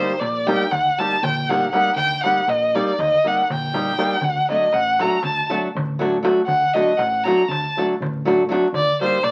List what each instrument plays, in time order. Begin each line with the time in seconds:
Already playing: nylon-string guitar G3 A#3 D#4 G4, violin C5
0.19 fingered electric bass A#1, violin D5, darbuka tek
0.47 nylon-string guitar G3 A#3 D#4 G4, violin G5, darbuka tek
0.59 darbuka tek
0.71 fingered electric bass D#2, violin F#5, darbuka tek, darbuka dum
0.98 nylon-string guitar G3 A#3 D#4 G4, violin A5, darbuka tek
1.13 darbuka tek
1.22 fingered electric bass A#1, violin G5, darbuka dum
1.37 darbuka tek
1.49 nylon-string guitar G3 A#3 D#4 G4, violin F#5, darbuka tek
1.72 nylon-string guitar G3 A#3 D#4 G4, violin F#5, darbuka tek
1.96 fingered electric bass D#2, violin G5, darbuka dum
2.11 darbuka tek
2.23 nylon-string guitar G3 A#3 D#4 G4, violin F#5, darbuka tek
2.47 fingered electric bass A#1, violin D#5, darbuka tek
2.61 darbuka tek
2.75 nylon-string guitar G3 A#3 D#4 G4, violin D5, darbuka tek
2.88 darbuka tek
2.98 fingered electric bass D#2, violin D#5, darbuka tek, darbuka dum
3.24 nylon-string guitar G3 A#3 D#4 G4, violin F#5
3.50 fingered electric bass A#1, violin G5, darbuka dum
3.74 nylon-string guitar G3 A#3 D#4 G4, darbuka tek
3.87 darbuka tek
3.98 nylon-string guitar G3 A#3 D#4 G4, darbuka tek
4.10 darbuka tek
4.21 fingered electric bass D2, violin F#5, darbuka dum
4.35 darbuka tek
4.49 nylon-string guitar F#3 A3 D4 F#4, violin D#5, darbuka tek
4.73 fingered electric bass A1, violin F#5, darbuka tek
4.99 nylon-string guitar F#3 A3 D4 F#4, violin A#5, darbuka tek
5.12 darbuka tek
5.23 fingered electric bass D2, violin A5, darbuka tek, darbuka dum
5.50 nylon-string guitar F#3 A3 D4 F#4, darbuka tek
5.63 darbuka tek
5.75 fingered electric bass A1, darbuka dum
5.89 darbuka tek
5.99 nylon-string guitar F#3 A3 D4 F#4, darbuka tek
6.23 nylon-string guitar F#3 A3 D4 F#4, darbuka tek
6.47 fingered electric bass D2, violin F#5, darbuka dum
6.63 darbuka tek
6.74 nylon-string guitar F#3 A3 D4 F#4, violin D#5, darbuka tek
6.97 fingered electric bass A1, violin F#5, darbuka tek
7.23 nylon-string guitar F#3 A3 D4, violin A#5, darbuka tek
7.28 nylon-string guitar F#4
7.39 darbuka tek
7.48 fingered electric bass D2, violin A5, darbuka tek, darbuka dum
7.77 nylon-string guitar F#3 A3 D4 F#4, darbuka tek
7.91 darbuka tek
8.00 fingered electric bass A1, darbuka dum
8.16 darbuka tek
8.25 nylon-string guitar F#3 A3 D4 F#4, darbuka tek
8.49 nylon-string guitar F#3 A3 D4 F#4, darbuka tek
8.72 fingered electric bass D#2, violin D5, darbuka dum
8.87 darbuka tek
9.01 nylon-string guitar G3 A#3 D#4 G4, violin C5, darbuka tek
9.23 fingered electric bass A#1, violin D5, darbuka tek